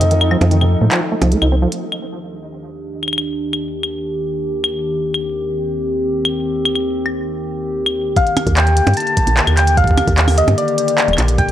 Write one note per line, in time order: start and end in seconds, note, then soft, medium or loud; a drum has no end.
0.00 0.36 F2 medium
0.00 0.05 C3 medium
0.00 1.69 F3 medium
0.00 1.73 A3 medium
0.00 1.68 C4 medium
0.00 1.69 D#4 medium
0.00 1.69 A4 medium
0.00 1.32 D#5 loud
0.00 closed hi-hat medium
0.11 0.15 D#3 medium
0.11 closed hi-hat soft
0.21 0.30 D#4 medium
0.21 claves medium
0.31 0.37 F3 medium
0.31 claves soft
0.41 0.76 F2 loud
0.41 0.45 F3 medium
0.41 closed hi-hat medium
0.41 percussion blips medium
0.51 0.57 D#3 medium
0.51 closed hi-hat soft
0.61 0.65 C3 medium
0.61 claves soft
0.81 0.88 A2 medium
0.81 0.85 A3 medium
0.91 1.01 F3 loud
0.91 clap loud
0.91 closed hi-hat medium
1.12 1.15 A3 loud
1.22 1.35 C2 medium
1.22 1.33 F3 medium
1.22 closed hi-hat medium
1.22 percussion blips medium
1.32 1.38 A3 medium
1.32 closed hi-hat medium
1.42 1.67 C2 medium
1.42 1.48 D#4 medium
1.42 claves medium
1.52 1.55 C4 medium
1.62 1.68 F3 medium
1.72 8.12 D#2 medium
1.72 8.12 D#3 medium
1.72 4.91 D4 medium
1.72 8.12 G4 medium
1.72 closed hi-hat medium
1.92 claves soft
3.03 claves soft
3.08 claves soft
3.13 claves soft
3.18 claves soft
3.53 claves soft
3.83 claves soft
4.64 claves soft
4.94 8.13 C4 medium
5.14 claves soft
6.25 claves soft
6.65 claves medium
6.75 claves soft
7.06 claves soft
7.86 claves soft
8.16 11.52 D3 medium
8.16 11.52 D#3 medium
8.16 11.52 A#3 medium
8.16 11.52 G4 medium
8.16 8.58 F5 medium
8.16 kick loud
8.16 closed hi-hat medium
8.27 closed hi-hat soft
8.37 closed hi-hat medium
8.37 percussion blips medium
8.37 claves soft
8.46 8.81 D#2 loud
8.46 kick loud
8.46 closed hi-hat medium
8.57 8.99 G5 medium
8.57 clap loud
8.57 closed hi-hat medium
8.67 closed hi-hat soft
8.77 closed hi-hat loud
8.87 8.93 G2 medium
8.87 closed hi-hat medium
8.87 percussion blips loud
8.94 closed hi-hat soft
8.97 9.59 A5 loud
8.97 closed hi-hat medium
9.00 closed hi-hat soft
9.07 closed hi-hat soft
9.17 kick loud
9.17 closed hi-hat medium
9.27 9.40 A#1 medium
9.27 closed hi-hat medium
9.37 clap loud
9.37 closed hi-hat medium
9.47 10.02 D#2 medium
9.47 closed hi-hat soft
9.47 claves medium
9.57 9.79 G5 medium
9.57 clap medium
9.57 closed hi-hat loud
9.67 closed hi-hat medium
9.77 10.39 F5 medium
9.77 kick loud
9.77 closed hi-hat medium
9.84 kick loud
9.84 closed hi-hat soft
9.91 kick medium
9.98 closed hi-hat loud
9.98 percussion blips medium
9.98 claves soft
10.07 10.42 D#2 loud
10.07 kick loud
10.07 closed hi-hat medium
10.18 clap loud
10.18 closed hi-hat medium
10.28 open hi-hat medium
10.28 percussion blips medium
10.28 claves soft
10.38 10.57 D#5 medium
10.38 closed hi-hat loud
10.48 10.55 G2 medium
10.48 closed hi-hat medium
10.48 percussion blips medium
10.58 11.14 D5 loud
10.58 closed hi-hat medium
10.68 closed hi-hat soft
10.78 closed hi-hat medium
10.88 closed hi-hat medium
10.98 clap loud
10.98 closed hi-hat medium
11.08 11.15 D#1 loud
11.08 closed hi-hat soft
11.13 claves medium
11.18 11.52 A#1 loud
11.18 clap medium
11.18 closed hi-hat loud
11.28 closed hi-hat medium
11.38 11.52 G5 loud
11.38 kick loud
11.38 closed hi-hat medium
11.49 closed hi-hat soft